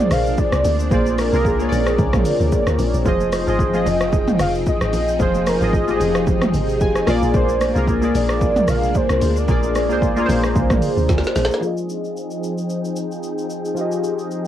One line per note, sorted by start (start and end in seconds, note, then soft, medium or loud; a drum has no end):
0.00 3.02 G#3 medium
0.00 0.62 A#3 medium
0.00 0.91 A#3 loud
0.00 3.02 D4 medium
0.00 0.92 F4 medium
0.00 0.93 G#4 medium
0.00 3.08 C5 medium
0.00 0.14 D5 loud
0.00 0.94 D5 loud
0.11 0.37 A#1 loud
0.11 0.40 F5 loud
0.11 cross-stick medium
0.11 open hi-hat medium
0.11 shaker loud
0.26 shaker soft
0.38 0.92 D5 loud
0.38 kick medium
0.38 shaker medium
0.52 0.64 C2 loud
0.52 cross-stick loud
0.52 shaker medium
0.64 0.90 D2 medium
0.64 7.03 C4 medium
0.64 open hi-hat medium
0.64 high conga medium
0.64 low conga medium
0.64 shaker loud
0.80 shaker medium
0.91 1.31 A#1 loud
0.91 1.24 A#3 medium
0.91 1.24 F4 medium
0.91 1.25 G#4 medium
0.91 1.21 C5 loud
0.91 1.25 D5 medium
0.91 kick loud
0.91 shaker medium
1.06 high conga medium
1.06 shaker medium
1.18 1.48 A#4 medium
1.18 cross-stick medium
1.18 open hi-hat medium
1.18 high conga medium
1.18 shaker medium
1.32 1.70 C2 loud
1.32 1.53 A#3 medium
1.32 1.54 F4 medium
1.32 1.55 G#4 medium
1.32 1.55 A#4 medium
1.32 shaker soft
1.45 2.79 G#4 loud
1.45 kick loud
1.45 shaker medium
1.59 2.45 A#3 medium
1.59 2.45 F4 medium
1.59 2.46 G#4 medium
1.59 1.67 C#5 medium
1.59 high conga medium
1.59 shaker medium
1.69 1.97 A#1 loud
1.69 2.49 D5 medium
1.69 open hi-hat soft
1.69 low conga medium
1.69 shaker medium
1.87 cross-stick loud
1.87 shaker medium
1.98 2.13 C2 loud
1.98 kick loud
1.98 low conga medium
1.98 shaker medium
2.13 2.25 A#1 medium
2.13 kick loud
2.13 cross-stick loud
2.13 mid tom loud
2.13 high conga medium
2.13 shaker medium
2.25 open hi-hat medium
2.25 shaker loud
2.40 2.52 D2 loud
2.40 shaker medium
2.52 kick loud
2.52 shaker medium
2.67 2.78 D2 medium
2.67 cross-stick loud
2.67 shaker medium
2.79 2.93 A#1 medium
2.79 open hi-hat medium
2.79 high conga medium
2.79 low conga medium
2.79 shaker loud
2.94 3.05 A#1 loud
2.94 shaker medium
3.05 3.45 F1 loud
3.05 3.38 F3 medium
3.05 7.03 F3 medium
3.05 7.03 D#4 medium
3.05 3.38 F4 medium
3.05 7.03 G#4 medium
3.05 3.39 G#4 medium
3.05 3.89 C5 loud
3.05 3.40 D#5 medium
3.05 7.03 G5 medium
3.05 kick loud
3.05 shaker medium
3.20 high conga medium
3.20 shaker medium
3.32 cross-stick medium
3.32 open hi-hat medium
3.32 high conga medium
3.32 shaker medium
3.46 3.84 G#1 medium
3.46 3.68 F3 medium
3.46 3.68 F4 medium
3.46 3.69 G#4 medium
3.46 3.69 D#5 medium
3.46 shaker soft
3.59 kick loud
3.59 shaker medium
3.73 4.59 F3 medium
3.73 4.59 F4 medium
3.73 4.60 G#4 medium
3.73 4.60 D#5 medium
3.73 high conga medium
3.73 shaker medium
3.86 4.37 F1 loud
3.86 4.40 D#5 loud
3.86 open hi-hat soft
3.86 low conga medium
3.86 shaker medium
4.01 cross-stick loud
4.01 shaker medium
4.13 kick loud
4.13 low conga medium
4.13 shaker medium
4.27 mid tom loud
4.27 high conga medium
4.27 shaker medium
4.39 4.65 F1 medium
4.39 4.53 F5 loud
4.39 cross-stick medium
4.39 open hi-hat medium
4.39 shaker loud
4.55 shaker medium
4.66 5.23 D#5 loud
4.66 kick medium
4.66 shaker medium
4.81 4.95 G#1 loud
4.81 cross-stick loud
4.81 shaker medium
4.93 5.19 A#1 medium
4.93 open hi-hat medium
4.93 high conga medium
4.93 low conga medium
4.93 shaker medium
5.08 shaker medium
5.19 5.60 F1 loud
5.19 5.52 F3 medium
5.19 5.53 F4 medium
5.19 5.53 G#4 medium
5.19 5.50 C5 loud
5.19 5.54 C5 medium
5.19 kick loud
5.19 shaker medium
5.35 high conga medium
5.35 shaker medium
5.47 5.76 A#4 loud
5.47 cross-stick medium
5.47 open hi-hat medium
5.47 high conga medium
5.47 shaker loud
5.61 5.99 G#1 loud
5.61 5.82 F3 medium
5.61 5.82 F4 medium
5.61 5.83 G#4 medium
5.61 5.84 D#5 medium
5.61 shaker soft
5.73 7.08 G#4 loud
5.73 kick loud
5.73 shaker medium
5.87 6.73 F3 medium
5.87 6.74 F4 medium
5.87 5.95 G4 medium
5.87 6.75 D#5 medium
5.87 high conga medium
5.87 shaker medium
5.96 6.77 G#4 medium
6.00 6.52 F1 loud
6.00 open hi-hat soft
6.00 low conga medium
6.00 shaker medium
6.15 cross-stick loud
6.15 shaker medium
6.27 kick loud
6.27 low conga medium
6.27 shaker medium
6.42 cross-stick loud
6.42 mid tom loud
6.42 high conga medium
6.42 shaker medium
6.54 6.83 G#1 medium
6.54 open hi-hat medium
6.54 shaker loud
6.69 shaker medium
6.81 7.07 F1 loud
6.81 7.31 G#5 medium
6.81 kick loud
6.81 shaker medium
6.95 cross-stick medium
6.95 shaker medium
7.07 7.22 A#1 loud
7.07 11.59 G#3 medium
7.07 7.61 A#3 loud
7.07 11.59 A#3 medium
7.07 11.59 D4 medium
7.07 7.61 F4 medium
7.07 7.62 G#4 medium
7.07 7.62 D5 loud
7.07 cross-stick medium
7.07 open hi-hat medium
7.07 high conga medium
7.07 low conga medium
7.07 shaker medium
7.22 7.34 A#1 loud
7.22 shaker medium
7.34 7.74 A#1 loud
7.34 7.85 C5 loud
7.34 kick loud
7.34 shaker medium
7.49 high conga medium
7.49 shaker medium
7.61 cross-stick medium
7.61 open hi-hat medium
7.61 high conga medium
7.61 shaker medium
7.75 8.13 C2 medium
7.75 7.96 A#3 medium
7.75 7.97 F4 medium
7.75 7.97 G#4 medium
7.75 7.98 A#4 medium
7.75 shaker soft
7.88 kick loud
7.88 shaker medium
8.02 8.87 A#3 medium
8.02 8.88 F4 medium
8.02 8.88 G#4 medium
8.02 8.89 D5 medium
8.02 high conga medium
8.02 shaker medium
8.15 8.66 A#1 loud
8.15 8.71 D5 loud
8.15 open hi-hat soft
8.15 low conga medium
8.15 shaker medium
8.29 cross-stick loud
8.29 shaker medium
8.41 kick loud
8.41 low conga medium
8.41 shaker medium
8.56 mid tom loud
8.56 high conga medium
8.56 shaker medium
8.68 8.94 A#1 medium
8.68 8.98 F5 loud
8.68 cross-stick medium
8.68 open hi-hat medium
8.68 shaker loud
8.83 shaker medium
8.95 9.40 C5 loud
8.95 kick medium
8.95 shaker medium
9.10 9.21 C2 loud
9.10 cross-stick loud
9.10 shaker medium
9.22 9.48 D2 medium
9.22 open hi-hat medium
9.22 high conga medium
9.22 low conga medium
9.22 shaker loud
9.37 11.10 D5 loud
9.37 shaker medium
9.48 9.92 A#1 loud
9.48 9.81 A#3 medium
9.48 9.81 F4 medium
9.48 9.82 G#4 medium
9.48 9.82 D5 medium
9.48 kick loud
9.48 shaker medium
9.63 high conga medium
9.63 shaker medium
9.75 cross-stick medium
9.75 open hi-hat medium
9.75 high conga medium
9.75 shaker loud
9.89 10.27 C2 medium
9.89 10.11 A#3 medium
9.89 10.11 F4 medium
9.89 10.12 G#4 medium
9.89 10.12 C5 medium
9.89 shaker soft
10.02 kick loud
10.02 shaker medium
10.16 11.02 A#3 medium
10.16 11.02 F4 medium
10.16 11.03 G#4 medium
10.16 10.24 A#4 medium
10.16 high conga medium
10.16 shaker medium
10.26 10.55 A#1 loud
10.26 11.06 C5 loud
10.26 open hi-hat soft
10.26 low conga medium
10.26 shaker medium
10.43 cross-stick loud
10.43 shaker medium
10.56 10.70 C2 loud
10.56 kick loud
10.56 low conga medium
10.56 shaker medium
10.70 10.82 A#1 medium
10.70 kick loud
10.70 cross-stick loud
10.70 mid tom loud
10.70 high conga medium
10.70 shaker medium
10.82 open hi-hat medium
10.82 shaker loud
10.97 11.09 D2 medium
10.97 shaker medium
11.09 11.23 D2 medium
11.09 kick loud
11.09 snare medium
11.09 shaker medium
11.18 snare medium
11.24 snare medium
11.24 shaker medium
11.36 11.50 A#1 medium
11.36 snare medium
11.36 open hi-hat medium
11.36 high conga medium
11.36 low conga medium
11.36 shaker medium
11.45 snare loud
11.51 snare loud
11.51 shaker medium
11.60 13.72 F3 medium
11.60 14.47 F3 medium
11.60 14.47 C4 medium
11.60 14.47 D#4 medium
11.60 13.73 F4 medium
11.60 14.47 G#4 medium
11.60 14.47 G5 medium
11.60 shaker medium
11.65 13.74 G#4 medium
11.65 13.75 D#5 medium
11.77 shaker medium
11.89 shaker medium
12.04 shaker soft
12.17 shaker medium
12.31 shaker soft
12.44 shaker medium
12.58 shaker medium
12.70 shaker medium
12.85 shaker medium
12.96 shaker loud
13.12 shaker soft
13.23 shaker medium
13.38 shaker medium
13.50 shaker medium
13.65 shaker medium
13.74 14.47 F3 medium
13.74 14.47 F4 medium
13.74 shaker medium
13.79 13.85 G4 medium
13.79 14.47 D#5 medium
13.85 14.47 G#4 medium
13.92 shaker medium
14.04 shaker medium
14.19 shaker soft
14.31 shaker medium